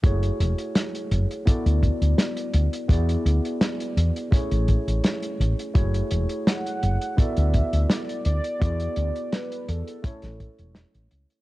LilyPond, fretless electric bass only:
\new Staff \with { instrumentName = "Fretless electric bass" } { \clef bass \time 4/4 \key a \major \tempo 4 = 84 fis,,16 r16 e,,16 r8. fis,,16 r8 d,16 r16 d,16 r8 d,16 r16 | e,16 r16 d,16 r8. e,16 r8 a,,16 r16 a,,16 r8 a,,16 r16 | fis,,16 r16 e,,16 r8. fis,,16 r8 d,16 r16 d,16 r8 d,16 r16 | e,16 r16 d,16 r8. e,16 r8 a,,16 r16 e,,16 r16 a,,16 cis,16 r16 | }